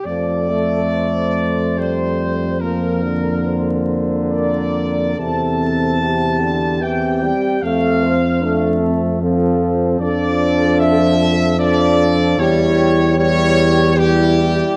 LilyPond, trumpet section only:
\new Staff \with { instrumentName = "Trumpet section" } { \time 3/4 \key f \major \tempo 4 = 74 d''2 c''4 | bes'4. r8 d''4 | a''2 g''4 | f''4. r4. |
\key d \minor d''4 e''4 d''4 | cis''4 cis''4 g'4 | }